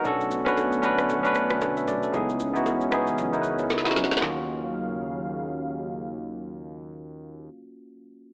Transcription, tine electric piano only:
0.04 0.36 C#4 medium
0.04 0.37 D4 medium
0.04 0.38 F#4 medium
0.04 0.38 A4 medium
0.45 0.76 C#4 medium
0.45 0.77 D4 medium
0.45 0.77 F#4 medium
0.45 0.78 B4 loud
0.82 1.15 C#4 medium
0.82 1.15 D4 medium
0.82 1.16 F#4 medium
0.82 1.16 B4 medium
1.23 1.64 C#4 medium
1.23 1.64 D4 medium
1.23 1.65 F#4 medium
1.23 1.63 B4 medium
1.77 1.87 E5 medium
1.88 2.02 D5 medium
2.03 2.28 A4 medium
2.12 2.45 B3 medium
2.12 2.46 D#4 medium
2.12 2.46 E4 medium
2.12 2.47 G#4 loud
2.54 2.85 B3 medium
2.54 2.85 D#4 medium
2.54 2.86 E4 medium
2.54 2.86 F#4 medium
2.91 3.23 B3 medium
2.91 3.24 D#4 medium
2.91 3.25 E4 medium
2.91 3.25 G#4 medium
3.32 3.73 B3 medium
3.32 3.73 D#4 medium
3.32 3.74 E4 medium
3.32 3.39 A#4 medium
3.42 3.77 B4 medium
3.84 4.15 B3 medium
3.84 4.16 D#4 medium
3.84 4.16 E4 medium
3.84 4.17 F#4 medium
4.16 7.43 A#3 medium
4.21 7.48 C#4 medium
4.25 7.52 F4 medium
4.29 7.57 F#4 medium

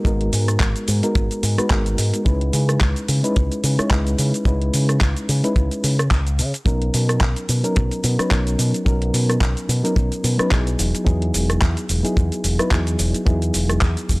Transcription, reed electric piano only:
0.04 0.99 G#3 medium
0.04 0.99 B3 medium
0.04 1.00 D#4 medium
0.04 1.00 F#4 medium
0.04 1.00 A#4 medium
1.03 1.55 G#3 medium
1.03 1.55 B3 medium
1.03 1.55 D#4 medium
1.03 1.55 F#4 medium
1.03 1.56 A#4 medium
1.58 1.67 G#3 medium
1.58 1.68 B3 medium
1.58 1.68 D#4 medium
1.58 1.68 F#4 medium
1.58 1.68 B4 medium
1.70 2.22 G#3 medium
1.70 2.23 B3 medium
1.70 2.23 D#4 medium
1.70 2.23 F#4 medium
1.70 2.23 A#4 medium
2.25 3.19 G#3 medium
2.25 3.20 C#4 medium
2.25 3.20 D#4 medium
2.25 3.20 E4 medium
2.25 3.20 B4 medium
3.23 3.75 G#3 medium
3.23 3.75 C#4 medium
3.23 3.76 D#4 medium
3.23 3.76 E4 medium
3.23 3.76 B4 medium
3.78 3.88 G#3 medium
3.78 3.88 C#4 medium
3.78 3.88 D#4 medium
3.78 3.88 E4 medium
3.78 3.88 C#5 medium
3.90 4.43 G#3 medium
3.90 4.43 C#4 medium
3.90 4.43 D#4 medium
3.90 4.43 E4 medium
3.90 4.43 B4 medium
4.45 5.40 G#3 medium
4.45 5.40 C#4 medium
4.45 5.40 D#4 medium
4.45 5.41 E4 medium
4.45 5.41 B4 medium
5.43 5.96 G#3 medium
5.43 5.96 C#4 medium
5.43 5.96 D#4 medium
5.43 5.96 E4 medium
5.43 5.96 B4 medium
6.65 7.60 F#3 medium
6.65 7.60 B3 medium
6.65 7.60 C#4 medium
6.65 7.61 D#4 medium
6.65 7.61 A#4 medium
7.63 8.16 F#3 medium
7.63 8.16 B3 medium
7.63 8.16 C#4 medium
7.63 8.16 D#4 medium
7.63 8.16 A#4 medium
8.18 8.28 F#3 medium
8.18 8.28 B3 medium
8.18 8.28 C#4 medium
8.18 8.28 D#4 medium
8.18 8.28 B4 medium
8.30 8.83 F#3 medium
8.30 8.83 B3 medium
8.30 8.83 C#4 medium
8.30 8.83 D#4 medium
8.30 8.83 A#4 medium
8.85 9.80 F#3 medium
8.85 9.80 B3 medium
8.85 9.80 C#4 medium
8.85 9.81 D#4 medium
8.85 9.81 A#4 medium
9.83 10.36 F#3 medium
9.83 10.36 B3 medium
9.83 10.36 C#4 medium
9.83 10.36 D#4 medium
9.83 10.36 A#4 medium
10.38 10.48 F#3 medium
10.38 10.48 B3 medium
10.38 10.48 C#4 medium
10.38 10.48 D#4 medium
10.38 10.48 B4 medium
10.50 11.03 F#3 medium
10.50 11.03 B3 medium
10.50 11.03 D#4 medium
10.50 11.03 E4 medium
10.50 11.03 G#4 medium
11.05 12.00 F#3 medium
11.05 12.00 B3 medium
11.05 12.00 D#4 medium
11.05 12.01 E4 medium
11.05 12.01 G#4 medium
12.03 12.56 F#3 medium
12.03 12.56 B3 medium
12.03 12.56 D#4 medium
12.03 12.56 E4 medium
12.03 12.56 G#4 medium
12.59 12.68 F#3 medium
12.59 12.69 B3 medium
12.59 12.69 D#4 medium
12.59 12.69 E4 medium
12.59 12.69 B4 medium
12.70 13.23 F#3 medium
12.70 13.23 B3 medium
12.70 13.23 D#4 medium
12.70 13.24 E4 medium
12.70 13.24 G#4 medium
13.25 14.20 F#3 medium
13.25 14.20 B3 medium
13.25 14.20 D#4 medium
13.25 14.20 E4 medium
13.25 14.20 G#4 medium

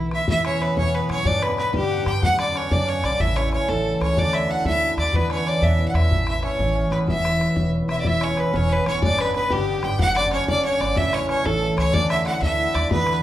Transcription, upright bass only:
0.00 0.17 B1 medium
0.29 0.66 E2 loud
0.77 1.02 E2 medium
1.09 1.22 F#2 medium
1.25 1.62 G2 medium
1.74 1.99 G2 loud
2.06 2.19 G2 medium
2.23 2.60 F#2 medium
2.71 2.96 F#2 loud
3.03 3.16 B1 medium
3.20 3.57 A1 medium
3.69 3.94 A1 medium
4.01 4.13 C#2 medium
4.17 4.54 D2 medium
4.65 4.90 D2 loud
4.97 5.10 D#2 medium
5.14 5.51 E2 medium
5.62 5.87 E2 loud
5.94 6.07 E2 loud
6.10 6.48 A1 medium
6.59 6.84 A1 loud
6.91 7.04 A1 medium
7.07 7.45 E1 medium
7.56 7.81 E1 loud
7.89 8.01 E1 loud
8.05 8.42 E1 medium
8.53 8.78 E1 loud
8.86 8.98 F#1 medium
9.03 9.40 G1 medium
9.51 9.76 G1 loud
9.83 9.96 G1 loud
9.99 10.37 F#1 medium
10.49 10.73 F#1 loud
10.81 10.93 G1 loud
10.96 11.34 A1 medium
11.45 11.70 A1 loud
11.77 11.90 C#2 medium
11.94 12.31 D2 medium
12.41 12.66 D2 loud
12.75 12.87 D#2 loud
12.91 13.23 E2 medium

